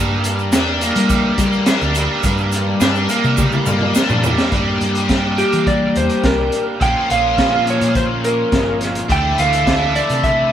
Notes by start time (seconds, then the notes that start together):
Already playing: G2 G3 A#3 D4 G4 A#4 D5
0.24 closed hi-hat, shaker
0.39 shaker
0.52 E2 D4, snare, closed hi-hat, shaker
0.81 A#3, closed hi-hat, shaker
0.96 G3, closed hi-hat
1.09 G3, kick, closed hi-hat, shaker
1.37 G3 A#3, kick, closed hi-hat, shaker
1.53 shaker
1.66 D4, snare, closed hi-hat, shaker
1.81 D2, shaker
1.95 G3, closed hi-hat, shaker
2.23 G2, kick, closed hi-hat, shaker
2.38 shaker
2.52 closed hi-hat, shaker
2.80 G2 D4, snare, closed hi-hat, shaker
2.95 shaker
3.09 A#3, closed hi-hat, shaker
3.24 C3, shaker
3.37 G3, kick, high tom, shaker
3.52 high tom, shaker
3.66 G2 A#3, mid tom, shaker
3.81 mid tom
3.95 D4, snare, shaker
4.09 A#2, mid tom, shaker
4.24 G3, floor tom, shaker
4.38 snare, shaker
4.52 G2 G3 A#3 D4 G4 A#4 G5, kick, closed hi-hat
4.81 G2, closed hi-hat
4.95 closed hi-hat
5.09 kick, snare, closed hi-hat
5.38 G4, closed hi-hat
5.52 E3, closed hi-hat
5.67 D5, kick, closed hi-hat
5.96 E2 C5, closed hi-hat
6.09 closed hi-hat
6.23 C2 A#4, kick, snare, closed hi-hat
6.52 closed hi-hat
6.80 A#1 A#2 F3 A#3 C#4 F4 A#4 C5 F5 G5, kick, closed hi-hat
7.10 A#1 F5, closed hi-hat
7.38 kick, snare, closed hi-hat
7.67 C#5, closed hi-hat
7.81 A#2, closed hi-hat
7.95 C5, kick, closed hi-hat
8.24 A#4, closed hi-hat
8.52 G1, kick, snare, closed hi-hat
8.81 snare, closed hi-hat
8.95 closed hi-hat
9.08 D2 D3 E3 A3 D4 E4 A4 D5 G5 A5, kick, closed hi-hat
9.38 D2 F5, closed hi-hat
9.53 closed hi-hat
9.67 kick, snare, closed hi-hat
9.95 D5, closed hi-hat
10.09 C3, closed hi-hat
10.23 E5, kick, closed hi-hat